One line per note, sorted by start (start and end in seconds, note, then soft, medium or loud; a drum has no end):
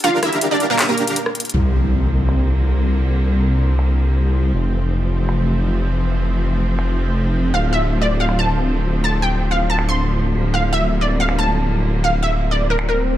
0.04 1.14 D4 medium
0.04 0.18 F4 medium
0.04 1.14 G4 medium
0.04 1.14 A#4 medium
0.04 0.18 F5 loud
0.04 1.14 F5 medium
0.04 1.14 A#5 medium
0.04 closed hi-hat medium
0.23 0.43 E4 medium
0.23 0.43 E5 loud
0.23 cross-stick medium
0.23 closed hi-hat medium
0.33 closed hi-hat medium
0.41 closed hi-hat medium
0.51 0.65 D4 medium
0.51 0.65 D5 medium
0.60 closed hi-hat medium
0.70 0.83 A#3 medium
0.70 0.83 A#4 medium
0.79 clap loud
0.79 closed hi-hat medium
0.89 1.47 A#3 medium
0.89 1.47 A#4 loud
0.98 closed hi-hat medium
1.07 closed hi-hat medium
1.16 closed hi-hat medium
1.26 cross-stick medium
1.35 closed hi-hat medium
1.40 closed hi-hat medium
1.45 closed hi-hat soft
1.50 closed hi-hat medium
1.54 4.52 C2 medium
1.54 4.51 D3 medium
1.54 13.17 F3 medium
1.54 4.51 A#3 medium
1.54 10.31 C4 medium
1.54 impact medium
2.29 finger snap medium
3.79 finger snap medium
4.54 7.52 F1 medium
4.54 7.51 E3 medium
4.54 10.31 A3 medium
5.29 finger snap medium
6.79 finger snap medium
7.54 10.33 D1 medium
7.54 13.17 D3 medium
7.54 7.68 F5 medium
7.73 7.93 E5 medium
8.02 8.15 D5 medium
8.20 8.34 F5 medium
8.29 finger snap medium
8.39 8.97 A5 medium
9.04 9.18 A5 medium
9.22 9.43 G5 medium
9.51 9.65 F5 medium
9.70 9.83 A5 medium
9.79 finger snap medium
9.89 10.47 C6 medium
10.35 13.17 D1 medium
10.35 13.17 G3 medium
10.35 13.17 A#3 medium
10.54 10.68 F5 medium
10.73 10.93 E5 loud
11.01 11.15 D5 medium
11.20 11.33 F5 medium
11.29 finger snap medium
11.39 11.97 A5 medium
12.04 12.18 F5 loud
12.23 12.43 E5 medium
12.51 12.65 D5 medium
12.70 12.84 A#4 medium
12.79 finger snap medium
12.79 swell medium
12.89 13.17 A#4 medium